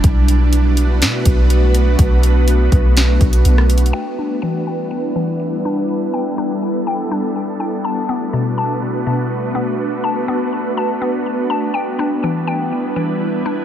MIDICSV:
0, 0, Header, 1, 5, 480
1, 0, Start_track
1, 0, Key_signature, 1, "minor"
1, 0, Tempo, 487805
1, 38, Time_signature, 4, 2, 24, 8
1, 13431, End_track
2, 0, Start_track
2, 0, Title_t, "Ambient pad"
2, 0, Program_c, 0, 92
2, 0, Note_on_c, 0, 62, 74
2, 35, Note_on_c, 0, 57, 83
2, 36, Note_on_c, 0, 59, 72
2, 36, Note_on_c, 0, 66, 74
2, 38, Note_on_c, 0, 71, 87
2, 3838, Note_off_c, 0, 57, 0
2, 3839, Note_off_c, 0, 59, 0
2, 3839, Note_off_c, 0, 66, 0
2, 3839, Note_off_c, 0, 71, 0
2, 3840, Note_off_c, 0, 62, 0
2, 3878, Note_on_c, 0, 55, 76
2, 3879, Note_on_c, 0, 59, 69
2, 3879, Note_on_c, 0, 62, 71
2, 3879, Note_on_c, 0, 64, 70
2, 3879, Note_on_c, 0, 71, 82
2, 5779, Note_off_c, 0, 71, 0
2, 5799, Note_on_c, 0, 69, 86
2, 7680, Note_off_c, 0, 55, 0
2, 7680, Note_off_c, 0, 64, 0
2, 7699, Note_off_c, 0, 69, 0
2, 7721, Note_on_c, 0, 57, 80
2, 7721, Note_on_c, 0, 71, 83
2, 7722, Note_on_c, 0, 66, 68
2, 11521, Note_off_c, 0, 57, 0
2, 11521, Note_off_c, 0, 71, 0
2, 11522, Note_off_c, 0, 66, 0
2, 11560, Note_on_c, 0, 55, 75
2, 11560, Note_on_c, 0, 64, 69
2, 11561, Note_on_c, 0, 71, 80
2, 13431, Note_off_c, 0, 55, 0
2, 13431, Note_off_c, 0, 59, 0
2, 13431, Note_off_c, 0, 62, 0
2, 13431, Note_off_c, 0, 64, 0
2, 13431, Note_off_c, 0, 71, 0
2, 13431, End_track
3, 0, Start_track
3, 0, Title_t, "Synth pluck"
3, 0, Program_c, 1, 84
3, 3869, Note_on_c, 1, 79, 101
3, 4118, Note_on_c, 1, 62, 84
3, 4359, Note_on_c, 1, 52, 78
3, 4583, Note_off_c, 1, 79, 0
3, 4595, Note_on_c, 1, 79, 89
3, 5061, Note_off_c, 1, 52, 0
3, 5073, Note_on_c, 1, 52, 73
3, 5550, Note_off_c, 1, 62, 0
3, 5561, Note_on_c, 1, 62, 80
3, 6025, Note_off_c, 1, 79, 0
3, 6037, Note_on_c, 1, 79, 90
3, 6266, Note_off_c, 1, 62, 0
3, 6278, Note_on_c, 1, 62, 80
3, 6516, Note_off_c, 1, 52, 0
3, 6747, Note_off_c, 1, 79, 0
3, 6759, Note_on_c, 1, 79, 93
3, 6989, Note_off_c, 1, 62, 0
3, 7000, Note_on_c, 1, 62, 84
3, 7466, Note_off_c, 1, 79, 0
3, 7478, Note_on_c, 1, 79, 87
3, 7718, Note_off_c, 1, 79, 0
3, 7719, Note_off_c, 1, 62, 0
3, 7719, Note_on_c, 1, 81, 105
3, 7960, Note_on_c, 1, 59, 77
3, 8199, Note_on_c, 1, 47, 77
3, 8429, Note_off_c, 1, 81, 0
3, 8440, Note_on_c, 1, 81, 88
3, 8909, Note_off_c, 1, 47, 0
3, 8921, Note_on_c, 1, 47, 80
3, 9384, Note_off_c, 1, 59, 0
3, 9396, Note_on_c, 1, 59, 81
3, 9865, Note_off_c, 1, 81, 0
3, 9877, Note_on_c, 1, 81, 95
3, 10106, Note_off_c, 1, 59, 0
3, 10118, Note_on_c, 1, 59, 90
3, 10360, Note_off_c, 1, 47, 0
3, 10590, Note_off_c, 1, 81, 0
3, 10602, Note_on_c, 1, 81, 98
3, 10828, Note_off_c, 1, 59, 0
3, 10839, Note_on_c, 1, 59, 82
3, 11303, Note_off_c, 1, 81, 0
3, 11315, Note_on_c, 1, 81, 92
3, 11552, Note_on_c, 1, 79, 100
3, 11556, Note_off_c, 1, 81, 0
3, 11559, Note_off_c, 1, 59, 0
3, 11800, Note_on_c, 1, 62, 83
3, 12040, Note_on_c, 1, 52, 79
3, 12263, Note_off_c, 1, 79, 0
3, 12275, Note_on_c, 1, 79, 87
3, 12743, Note_off_c, 1, 52, 0
3, 12754, Note_on_c, 1, 52, 77
3, 13229, Note_off_c, 1, 62, 0
3, 13241, Note_on_c, 1, 62, 84
3, 13431, Note_off_c, 1, 52, 0
3, 13431, Note_off_c, 1, 62, 0
3, 13431, Note_off_c, 1, 79, 0
3, 13431, End_track
4, 0, Start_track
4, 0, Title_t, "808-style bass"
4, 0, Program_c, 2, 38
4, 38, Note_on_c, 2, 35, 107
4, 998, Note_on_c, 2, 47, 97
4, 1013, Note_off_c, 2, 35, 0
4, 1226, Note_off_c, 2, 47, 0
4, 1239, Note_on_c, 2, 35, 108
4, 1930, Note_off_c, 2, 35, 0
4, 1957, Note_on_c, 2, 35, 116
4, 2649, Note_off_c, 2, 35, 0
4, 2678, Note_on_c, 2, 35, 107
4, 3139, Note_off_c, 2, 35, 0
4, 3157, Note_on_c, 2, 35, 101
4, 3388, Note_off_c, 2, 35, 0
4, 3396, Note_on_c, 2, 35, 105
4, 3858, Note_off_c, 2, 35, 0
4, 13431, End_track
5, 0, Start_track
5, 0, Title_t, "Drums"
5, 38, Note_on_c, 9, 36, 115
5, 38, Note_on_c, 9, 42, 86
5, 136, Note_off_c, 9, 36, 0
5, 136, Note_off_c, 9, 42, 0
5, 280, Note_on_c, 9, 42, 77
5, 378, Note_off_c, 9, 42, 0
5, 518, Note_on_c, 9, 42, 81
5, 616, Note_off_c, 9, 42, 0
5, 758, Note_on_c, 9, 42, 70
5, 857, Note_off_c, 9, 42, 0
5, 1001, Note_on_c, 9, 42, 80
5, 1008, Note_on_c, 9, 38, 113
5, 1100, Note_off_c, 9, 42, 0
5, 1107, Note_off_c, 9, 38, 0
5, 1235, Note_on_c, 9, 42, 89
5, 1239, Note_on_c, 9, 36, 82
5, 1333, Note_off_c, 9, 42, 0
5, 1337, Note_off_c, 9, 36, 0
5, 1478, Note_on_c, 9, 42, 82
5, 1576, Note_off_c, 9, 42, 0
5, 1717, Note_on_c, 9, 42, 72
5, 1816, Note_off_c, 9, 42, 0
5, 1957, Note_on_c, 9, 36, 116
5, 1957, Note_on_c, 9, 42, 91
5, 2055, Note_off_c, 9, 36, 0
5, 2055, Note_off_c, 9, 42, 0
5, 2198, Note_on_c, 9, 42, 74
5, 2296, Note_off_c, 9, 42, 0
5, 2437, Note_on_c, 9, 42, 80
5, 2535, Note_off_c, 9, 42, 0
5, 2678, Note_on_c, 9, 36, 94
5, 2678, Note_on_c, 9, 42, 72
5, 2776, Note_off_c, 9, 36, 0
5, 2776, Note_off_c, 9, 42, 0
5, 2919, Note_on_c, 9, 42, 79
5, 2926, Note_on_c, 9, 38, 113
5, 3018, Note_off_c, 9, 42, 0
5, 3025, Note_off_c, 9, 38, 0
5, 3156, Note_on_c, 9, 42, 53
5, 3157, Note_on_c, 9, 36, 80
5, 3255, Note_off_c, 9, 42, 0
5, 3256, Note_off_c, 9, 36, 0
5, 3276, Note_on_c, 9, 42, 86
5, 3374, Note_off_c, 9, 42, 0
5, 3395, Note_on_c, 9, 42, 81
5, 3494, Note_off_c, 9, 42, 0
5, 3525, Note_on_c, 9, 37, 88
5, 3623, Note_off_c, 9, 37, 0
5, 3637, Note_on_c, 9, 42, 62
5, 3716, Note_off_c, 9, 42, 0
5, 3716, Note_on_c, 9, 42, 61
5, 3797, Note_off_c, 9, 42, 0
5, 3797, Note_on_c, 9, 42, 58
5, 3895, Note_off_c, 9, 42, 0
5, 13431, End_track
0, 0, End_of_file